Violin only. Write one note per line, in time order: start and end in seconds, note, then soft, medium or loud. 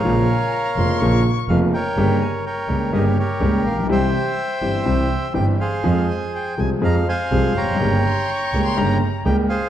0.29 0.54 G#5 medium
0.52 0.64 A#5 medium
0.65 0.71 A#5 medium
0.76 1.02 C6 medium
1.00 1.37 C#6 loud
8.03 8.31 C6 medium
8.30 8.65 C#6 medium
8.65 8.79 C6 medium
8.78 9.14 A#5 medium